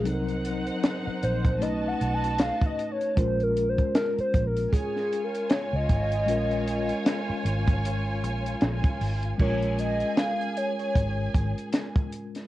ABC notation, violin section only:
X:1
M:4/4
L:1/8
Q:"Swing 16ths" 1/4=77
K:Bbm
V:1 name="Violin section"
[Ecg]4 [^F^d=a]4 | z4 [Fda]4- | [Fda]8 | [Aa]6- [Aa] z |]